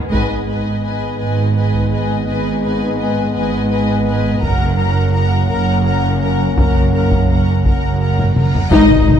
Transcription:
Already playing: D#3 G#3 B3 G#4
0.10 G#1 G#2 G#3 B3 B4 D#5 G#5, taiko
0.47 B4 D#5 G#5
0.83 B4 D#5 G#5
1.17 G#1 G#2 B4 D#5 G#5
1.55 B4 D#5 G#5
1.74 taiko
1.92 B4 D#5 G#5
2.26 G#1 G#2 B4 D#5 G#5
2.63 B4 D#5 G#5
2.97 B4 D#5 G#5
3.33 G#1 G#2 B4 D#5 G#5
3.69 B4 D#5 G#5
4.05 B4 D#5 G#5
4.40 F#1 F#2 A#3 C#4 A#4 F#5 A#5, taiko
4.76 A#4 F#5 A#5
5.12 A#4 F#5 A#5
5.49 F#1 F#2 A#4 F#5 A#5
5.84 A#4 F#5 A#5
6.20 A#4 F#5 A#5
6.56 F#1 F#2 A#4 F#5 A#5, taiko, reverse cymbal
6.94 A#4 F#5 A#5
7.11 taiko
7.29 A#4 F#5 A#5
7.65 F#1 F#2 A#4 F#5 A#5, taiko
8.00 A#4 F#5 A#5
8.19 taiko low-mid
8.36 A#4 F#5 A#5, taiko mid
8.55 taiko low
8.71 G#1 G#2 D#4 D#5, concert bass drum, taiko, crash, impact
8.90 G#2, taiko mid
9.07 G#1 G#2, taiko mid

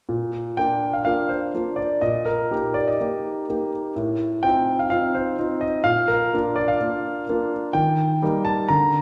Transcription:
0.09 A#2
0.57 A#3 D4 F4 G5
0.93 F5
1.05 A#3 D4 F4 F5
1.29 C5
1.54 A#3 D4 F4
1.76 D5
2.01 A#2 D#5
2.25 A#4
2.51 A#3 D#4 G4
2.74 D5
2.88 D#5
3.01 A#3 D#4 G4
3.49 A#3 D#4 G4
3.96 A2
4.43 C4 D#4 F4 G5
4.79 F5
4.90 C4 D#4 F4 F5
5.15 C5
5.39 C4 D#4 F4
5.61 D#5
5.84 A#2 F5
6.08 A#4
6.33 A#3 D4 F4
6.56 D5
6.68 F5
6.81 A#3 D4 F4
7.29 A#3 D4 F4
7.73 D#3 G5
8.22 G3 A#3 D#4
8.45 A5
8.69 D3 A#5

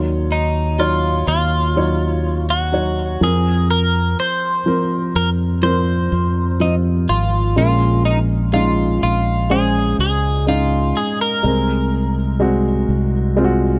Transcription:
Already playing: D#2 D#3 F#3 D#4 C#5
0.32 D#4
0.79 F#3 D#4 F4 C#5
1.27 D#2 F4
1.76 F#3 D#4 C#5
2.50 F#4
2.72 F#3 D#4 C#5
3.21 F2 F3 C4 G#4 A#4
3.71 A#4
4.20 C5
4.66 F3 C4 A#4
5.15 F2 A#4
5.63 F3 C4 A#4 C5
6.12 F2
6.60 F3 C4 D#4 F4
7.09 G#1 F4
7.56 A#1 A#2 G#3 C#4 F4 A#4
8.05 D#4
8.53 G#3 C#4 D#4 F4
9.03 A#1 F4
9.50 G#3 C#4 G#4 C5
9.99 C#2 G#4
10.47 G#3 C#4 D#4 F4
10.97 G#4
11.21 A#4
11.43 C2 C3 G#3 C4 A#4
12.40 G#3 C4 F#4
12.88 C2
13.36 G#3 C4 F4
13.44 F#4

